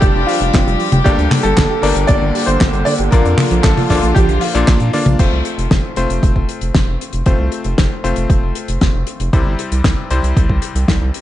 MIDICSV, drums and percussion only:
0, 0, Header, 1, 2, 480
1, 0, Start_track
1, 0, Key_signature, -1, "major"
1, 0, Tempo, 517241
1, 979, Time_signature, 4, 2, 24, 8
1, 10403, End_track
2, 0, Start_track
2, 0, Title_t, "Drums"
2, 17, Note_on_c, 9, 42, 83
2, 20, Note_on_c, 9, 36, 121
2, 109, Note_off_c, 9, 42, 0
2, 113, Note_off_c, 9, 36, 0
2, 265, Note_on_c, 9, 46, 118
2, 358, Note_off_c, 9, 46, 0
2, 380, Note_on_c, 9, 42, 72
2, 473, Note_off_c, 9, 42, 0
2, 496, Note_on_c, 9, 42, 99
2, 500, Note_on_c, 9, 36, 121
2, 507, Note_on_c, 9, 38, 110
2, 510, Note_on_c, 9, 39, 85
2, 589, Note_off_c, 9, 42, 0
2, 593, Note_off_c, 9, 36, 0
2, 600, Note_off_c, 9, 38, 0
2, 603, Note_off_c, 9, 39, 0
2, 628, Note_on_c, 9, 42, 53
2, 721, Note_off_c, 9, 42, 0
2, 740, Note_on_c, 9, 46, 100
2, 833, Note_off_c, 9, 46, 0
2, 855, Note_on_c, 9, 42, 65
2, 856, Note_on_c, 9, 48, 82
2, 948, Note_off_c, 9, 42, 0
2, 949, Note_off_c, 9, 48, 0
2, 980, Note_on_c, 9, 36, 115
2, 982, Note_on_c, 9, 42, 89
2, 1073, Note_off_c, 9, 36, 0
2, 1075, Note_off_c, 9, 42, 0
2, 1102, Note_on_c, 9, 42, 55
2, 1195, Note_off_c, 9, 42, 0
2, 1217, Note_on_c, 9, 48, 80
2, 1219, Note_on_c, 9, 46, 111
2, 1221, Note_on_c, 9, 39, 72
2, 1310, Note_off_c, 9, 48, 0
2, 1311, Note_off_c, 9, 46, 0
2, 1314, Note_off_c, 9, 39, 0
2, 1337, Note_on_c, 9, 42, 70
2, 1429, Note_off_c, 9, 42, 0
2, 1458, Note_on_c, 9, 42, 88
2, 1459, Note_on_c, 9, 39, 89
2, 1460, Note_on_c, 9, 36, 111
2, 1467, Note_on_c, 9, 38, 109
2, 1551, Note_off_c, 9, 42, 0
2, 1552, Note_off_c, 9, 39, 0
2, 1553, Note_off_c, 9, 36, 0
2, 1560, Note_off_c, 9, 38, 0
2, 1699, Note_on_c, 9, 46, 116
2, 1792, Note_off_c, 9, 46, 0
2, 1812, Note_on_c, 9, 42, 67
2, 1905, Note_off_c, 9, 42, 0
2, 1934, Note_on_c, 9, 42, 91
2, 1940, Note_on_c, 9, 36, 116
2, 2027, Note_off_c, 9, 42, 0
2, 2032, Note_off_c, 9, 36, 0
2, 2182, Note_on_c, 9, 46, 115
2, 2274, Note_off_c, 9, 46, 0
2, 2300, Note_on_c, 9, 42, 77
2, 2392, Note_off_c, 9, 42, 0
2, 2417, Note_on_c, 9, 42, 87
2, 2419, Note_on_c, 9, 36, 117
2, 2420, Note_on_c, 9, 39, 84
2, 2422, Note_on_c, 9, 38, 113
2, 2510, Note_off_c, 9, 42, 0
2, 2512, Note_off_c, 9, 36, 0
2, 2512, Note_off_c, 9, 39, 0
2, 2515, Note_off_c, 9, 38, 0
2, 2535, Note_on_c, 9, 42, 51
2, 2628, Note_off_c, 9, 42, 0
2, 2657, Note_on_c, 9, 46, 117
2, 2750, Note_off_c, 9, 46, 0
2, 2769, Note_on_c, 9, 42, 77
2, 2862, Note_off_c, 9, 42, 0
2, 2898, Note_on_c, 9, 42, 95
2, 2900, Note_on_c, 9, 36, 119
2, 2991, Note_off_c, 9, 42, 0
2, 2992, Note_off_c, 9, 36, 0
2, 3020, Note_on_c, 9, 42, 58
2, 3113, Note_off_c, 9, 42, 0
2, 3134, Note_on_c, 9, 48, 85
2, 3138, Note_on_c, 9, 39, 81
2, 3139, Note_on_c, 9, 46, 107
2, 3227, Note_off_c, 9, 48, 0
2, 3230, Note_off_c, 9, 39, 0
2, 3232, Note_off_c, 9, 46, 0
2, 3258, Note_on_c, 9, 42, 65
2, 3351, Note_off_c, 9, 42, 0
2, 3374, Note_on_c, 9, 42, 93
2, 3376, Note_on_c, 9, 38, 110
2, 3377, Note_on_c, 9, 39, 92
2, 3380, Note_on_c, 9, 36, 113
2, 3467, Note_off_c, 9, 42, 0
2, 3469, Note_off_c, 9, 38, 0
2, 3469, Note_off_c, 9, 39, 0
2, 3473, Note_off_c, 9, 36, 0
2, 3501, Note_on_c, 9, 46, 75
2, 3503, Note_on_c, 9, 48, 66
2, 3594, Note_off_c, 9, 46, 0
2, 3596, Note_off_c, 9, 48, 0
2, 3616, Note_on_c, 9, 38, 35
2, 3616, Note_on_c, 9, 46, 108
2, 3620, Note_on_c, 9, 36, 60
2, 3709, Note_off_c, 9, 38, 0
2, 3709, Note_off_c, 9, 46, 0
2, 3713, Note_off_c, 9, 36, 0
2, 3743, Note_on_c, 9, 42, 63
2, 3836, Note_off_c, 9, 42, 0
2, 3860, Note_on_c, 9, 36, 117
2, 3864, Note_on_c, 9, 42, 104
2, 3952, Note_off_c, 9, 36, 0
2, 3957, Note_off_c, 9, 42, 0
2, 3979, Note_on_c, 9, 42, 52
2, 4072, Note_off_c, 9, 42, 0
2, 4092, Note_on_c, 9, 46, 121
2, 4185, Note_off_c, 9, 46, 0
2, 4225, Note_on_c, 9, 42, 75
2, 4318, Note_off_c, 9, 42, 0
2, 4339, Note_on_c, 9, 38, 103
2, 4340, Note_on_c, 9, 36, 118
2, 4341, Note_on_c, 9, 39, 86
2, 4341, Note_on_c, 9, 42, 85
2, 4432, Note_off_c, 9, 38, 0
2, 4433, Note_off_c, 9, 36, 0
2, 4433, Note_off_c, 9, 39, 0
2, 4434, Note_off_c, 9, 42, 0
2, 4453, Note_on_c, 9, 42, 53
2, 4546, Note_off_c, 9, 42, 0
2, 4578, Note_on_c, 9, 46, 116
2, 4671, Note_off_c, 9, 46, 0
2, 4696, Note_on_c, 9, 48, 87
2, 4700, Note_on_c, 9, 42, 78
2, 4789, Note_off_c, 9, 48, 0
2, 4793, Note_off_c, 9, 42, 0
2, 4818, Note_on_c, 9, 42, 90
2, 4820, Note_on_c, 9, 36, 114
2, 4824, Note_on_c, 9, 49, 89
2, 4911, Note_off_c, 9, 42, 0
2, 4913, Note_off_c, 9, 36, 0
2, 4917, Note_off_c, 9, 49, 0
2, 5058, Note_on_c, 9, 42, 83
2, 5150, Note_off_c, 9, 42, 0
2, 5184, Note_on_c, 9, 42, 64
2, 5277, Note_off_c, 9, 42, 0
2, 5298, Note_on_c, 9, 42, 90
2, 5299, Note_on_c, 9, 38, 116
2, 5300, Note_on_c, 9, 36, 110
2, 5391, Note_off_c, 9, 38, 0
2, 5391, Note_off_c, 9, 42, 0
2, 5393, Note_off_c, 9, 36, 0
2, 5535, Note_on_c, 9, 42, 83
2, 5627, Note_off_c, 9, 42, 0
2, 5661, Note_on_c, 9, 42, 64
2, 5754, Note_off_c, 9, 42, 0
2, 5781, Note_on_c, 9, 36, 117
2, 5785, Note_on_c, 9, 42, 90
2, 5873, Note_off_c, 9, 36, 0
2, 5878, Note_off_c, 9, 42, 0
2, 5900, Note_on_c, 9, 36, 61
2, 5993, Note_off_c, 9, 36, 0
2, 6020, Note_on_c, 9, 42, 80
2, 6113, Note_off_c, 9, 42, 0
2, 6137, Note_on_c, 9, 42, 70
2, 6230, Note_off_c, 9, 42, 0
2, 6260, Note_on_c, 9, 36, 118
2, 6260, Note_on_c, 9, 38, 119
2, 6260, Note_on_c, 9, 42, 81
2, 6352, Note_off_c, 9, 42, 0
2, 6353, Note_off_c, 9, 36, 0
2, 6353, Note_off_c, 9, 38, 0
2, 6508, Note_on_c, 9, 42, 88
2, 6601, Note_off_c, 9, 42, 0
2, 6614, Note_on_c, 9, 42, 72
2, 6707, Note_off_c, 9, 42, 0
2, 6735, Note_on_c, 9, 42, 79
2, 6740, Note_on_c, 9, 36, 118
2, 6828, Note_off_c, 9, 42, 0
2, 6833, Note_off_c, 9, 36, 0
2, 6977, Note_on_c, 9, 42, 89
2, 7069, Note_off_c, 9, 42, 0
2, 7093, Note_on_c, 9, 42, 70
2, 7186, Note_off_c, 9, 42, 0
2, 7220, Note_on_c, 9, 36, 115
2, 7220, Note_on_c, 9, 38, 127
2, 7225, Note_on_c, 9, 42, 85
2, 7313, Note_off_c, 9, 36, 0
2, 7313, Note_off_c, 9, 38, 0
2, 7318, Note_off_c, 9, 42, 0
2, 7466, Note_on_c, 9, 42, 87
2, 7558, Note_off_c, 9, 42, 0
2, 7574, Note_on_c, 9, 42, 66
2, 7666, Note_off_c, 9, 42, 0
2, 7700, Note_on_c, 9, 36, 117
2, 7701, Note_on_c, 9, 42, 81
2, 7793, Note_off_c, 9, 36, 0
2, 7794, Note_off_c, 9, 42, 0
2, 7937, Note_on_c, 9, 42, 93
2, 8030, Note_off_c, 9, 42, 0
2, 8058, Note_on_c, 9, 42, 75
2, 8151, Note_off_c, 9, 42, 0
2, 8178, Note_on_c, 9, 42, 80
2, 8180, Note_on_c, 9, 36, 123
2, 8181, Note_on_c, 9, 38, 121
2, 8271, Note_off_c, 9, 42, 0
2, 8273, Note_off_c, 9, 36, 0
2, 8274, Note_off_c, 9, 38, 0
2, 8415, Note_on_c, 9, 42, 83
2, 8507, Note_off_c, 9, 42, 0
2, 8537, Note_on_c, 9, 42, 72
2, 8630, Note_off_c, 9, 42, 0
2, 8660, Note_on_c, 9, 36, 127
2, 8660, Note_on_c, 9, 42, 77
2, 8753, Note_off_c, 9, 36, 0
2, 8753, Note_off_c, 9, 42, 0
2, 8898, Note_on_c, 9, 42, 86
2, 8991, Note_off_c, 9, 42, 0
2, 9019, Note_on_c, 9, 42, 70
2, 9112, Note_off_c, 9, 42, 0
2, 9135, Note_on_c, 9, 38, 127
2, 9137, Note_on_c, 9, 42, 83
2, 9140, Note_on_c, 9, 36, 115
2, 9228, Note_off_c, 9, 38, 0
2, 9229, Note_off_c, 9, 42, 0
2, 9232, Note_off_c, 9, 36, 0
2, 9377, Note_on_c, 9, 42, 88
2, 9470, Note_off_c, 9, 42, 0
2, 9502, Note_on_c, 9, 42, 65
2, 9595, Note_off_c, 9, 42, 0
2, 9620, Note_on_c, 9, 36, 127
2, 9622, Note_on_c, 9, 42, 83
2, 9712, Note_off_c, 9, 36, 0
2, 9715, Note_off_c, 9, 42, 0
2, 9739, Note_on_c, 9, 36, 63
2, 9832, Note_off_c, 9, 36, 0
2, 9855, Note_on_c, 9, 42, 92
2, 9948, Note_off_c, 9, 42, 0
2, 9982, Note_on_c, 9, 42, 68
2, 10074, Note_off_c, 9, 42, 0
2, 10099, Note_on_c, 9, 36, 126
2, 10101, Note_on_c, 9, 38, 112
2, 10104, Note_on_c, 9, 42, 82
2, 10192, Note_off_c, 9, 36, 0
2, 10194, Note_off_c, 9, 38, 0
2, 10196, Note_off_c, 9, 42, 0
2, 10341, Note_on_c, 9, 42, 85
2, 10403, Note_off_c, 9, 42, 0
2, 10403, End_track
0, 0, End_of_file